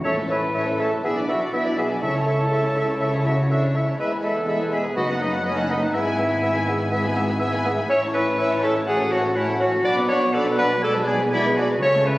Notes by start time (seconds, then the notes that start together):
0.03 A1 A2 A3 C#4 E4 C#5 E5 A5 C#6
0.17 A3 A4 E5
0.28 A3 C#4 B4 C#5 E5 A5 B5
0.42 A3 A4 E5
0.53 A3 C#4 C#5 E5 A5
0.65 A3 A4 E5
0.78 A3 C#4 A4 C#5 E5 A5
0.90 A3 A4 E5
1.03 B1 B2 B3 D4 E4 G#4 D5 E5 G#5
1.15 D4 D5 E5
1.27 B3 E4 F#4 D5 E5 F#5
1.39 D4 D5 E5
1.51 B3 D4 E4 D5 E5
1.64 D4 D5 E5
1.77 B3 E4 G#4 D5 E5 G#5
1.89 D4 D5 E5
2.00 C#2 C#3 A3 C#4 E4 A4 E5 A5 C#6
2.14 C#4 C#5 A5
2.26 A3 E4 E5 C#6
2.38 C#4 C#5 A5
2.51 A3 E4 E5 C#6
2.62 C#4 C#5 A5
2.75 A3 E4 E5 C#6
2.87 C#4 C#5 A5
3.00 A3 E4 E5 C#6
3.12 C#4 C#5 A5
3.24 A3 E4 F#4 E5 F#5 C#6
3.37 C#4 C#5 A5
3.49 A3 D4 E4 D5 E5 C#6
3.61 C#4 C#5 A5
3.73 A3 E4 E5 C#6
3.86 C#4 C#5 A5
3.98 E1 E2 G#3 B3 E4 B4 E5 B5
4.10 B3 B4 G#5
4.22 G#3 A4 E5 A5 B5
4.26 E5
4.34 B3 B4 G#5
4.46 G#3 E5 B5
4.58 B3 B4 G#5
4.72 G#3 G#4 E5 G#5 B5
4.83 B3 B4 G#5
4.96 F#1 F#2 A3 B3 D#4 F#4 D#5 F#5 B5
5.07 B3 F#5 A5
5.19 A3 B3 D#4 D#5 B5
5.32 B3 F#5 A5
5.43 A3 B3 C#4 C#5 D#5 B5
5.56 B3 F#5 A5
5.67 A3 B3 D#4 D#5 B5
5.80 B3 F#5 A5
5.91 G#1 G#2 G#3 B3 E4 E5 G#5
6.05 B3 G#5 B5
6.17 G#3 B3 E5 G#5
6.30 B3 G#5 B5
6.42 G#3 B3 E5 G#5
6.54 B3 G#5 B5
6.66 G#3 B3 E5 G#5
6.78 B3 G#5 B5
6.91 G#3 B3 E5 G#5
7.02 B3 G#5 B5
7.14 G#3 B3 E5 G#5
7.28 B3 G#5 B5
7.39 G#3 B3 E5 G#5
7.53 B3 G#5 B5
7.64 G#3 B3 E5 G#5
7.78 B3 G#5 B5
7.89 A1 A2 C#4 E4 C#5 E5 C#6
8.02 C#4 C#5 A5
8.13 C#4 E4 B4 E5 B5 C#6
8.26 C#4 C#5 A5
8.38 C#4 E4 E5 C#6
8.51 C#4 C#5 A5
8.62 C#4 E4 A4 E5 A5 C#6
8.75 C#4 C#5 A5
8.86 A3 C#4 F#4 G#4 C#5 F#5 G#5 A5
8.98 C#4 A4 F#5
9.11 A3 C#4 F#4 C#5 F#5 A5
9.24 C#4 A4 F#5
9.35 A3 C#4 E4 C#5 E5 F#5 A5
9.48 C#4 A4 F#5
9.59 A3 C#4 F#4 C#5 F#5 A5
9.73 C#4 A4 F#5
9.84 B1 B2 D4 D5 F#5 B5 D6
9.96 B3 B4 F#5
10.08 D4 C#5 D5 F#5 B5 C#6
10.20 B3 B4 F#5
10.32 D4 A4 D5 F#5 A5 B5
10.36 D4
10.45 B3 B4 F#5
10.57 D4 B4 D5 F#5 B5
10.70 B3 B4 F#5
10.82 G#3 D4 G#4 A4 D5 G#5 A5 B5
10.94 B3 B4 G#5
11.06 G#3 D4 G#4 D5 G#5 B5
11.19 B3 B4 G#5
11.31 G#3 D4 E4 D5 E5 G#5 B5
11.45 B3 B4 G#5
11.56 G#3 D4 F#4 D5 F#5 G#5 B5
11.70 B3 B4 G#5
11.80 C#2 C#3 C#4 A4 C#5 E5 A5 C#6
11.95 A3 C#5 A5
12.05 C#4 B4 E5 B5 C#6